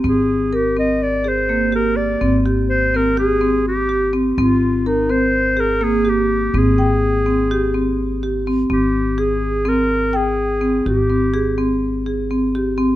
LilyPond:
<<
  \new Staff \with { instrumentName = "Clarinet" } { \time 9/8 \key aes \lydian \tempo 4. = 83 aes'4 g'8 ees''8 d''8 c''4 bes'8 d''8~ | d''8 r8 c''8 bes'8 aes'4 g'4 r8 | f'4 ees'8 c''4 bes'8 aes'8 g'4 | aes'2.~ aes'8 r4 |
g'4 aes'4 bes'4 aes'4. | g'2 r2 r8 | }
  \new Staff \with { instrumentName = "Marimba" } { \time 9/8 \key aes \lydian c'4 bes'8 c'4 aes'8 bes8 g'4 | c'8 g'4 c'8 g'8 c'4 g'8 c'8 | c'4 bes'8 c'4 aes'8 bes8 g'4 | c'8 g''4 c'8 g'8 c'4 g'8 c'8 |
c'4 aes'4 c'4 g''4 c'8 | g'8 c'8 aes'8 c'4 aes'8 c'8 g'8 c'8 | }
  \new Staff \with { instrumentName = "Upright bass" } { \clef bass \time 9/8 \key aes \lydian aes,,1~ aes,,8 | aes,,1~ aes,,8 | aes,,1~ aes,,8 | aes,,1~ aes,,8 |
aes,,1~ aes,,8 | aes,,1~ aes,,8 | }
>>